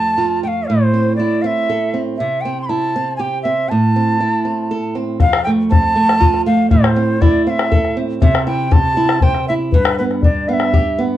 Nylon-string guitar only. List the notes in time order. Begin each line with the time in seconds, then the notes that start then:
Already playing: F2 A3
0.18 F4
0.43 A3
0.70 A2
0.94 C4
1.20 E4
1.44 C4
1.70 A4
1.94 C4
2.20 C3
2.45 C4
2.69 E4
2.96 C4
3.19 G4
3.45 C4
3.71 A2
3.96 C4
4.21 E4
4.45 C4
4.71 A4
4.95 C4
5.20 F2
5.47 A3
5.71 C4
5.96 A3
6.20 F4
6.46 A3
6.71 A2
6.96 C4
7.22 E4
7.47 C4
7.72 A4
7.97 C4
8.22 C3
8.47 E4
8.71 G4
8.97 E4
9.22 C5
9.50 E4
9.74 G2
10.00 B3
10.24 D4
10.49 B3
10.74 G4
10.99 B3